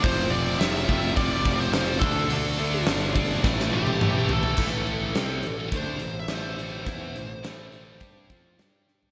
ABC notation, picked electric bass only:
X:1
M:4/4
L:1/8
Q:1/4=105
K:Am
V:1 name="Picked electric bass" clef=bass
F,,,2 F,,, F,,, F,,, F,,, F,,, D,, | D,, D,, G,,,2 A,,, A,,, A,,,2 | A,,,2 C,, A,,, D,, A,,, A,,,2 | E,, A,,, A,,,2 G,, F,, G,,2 |]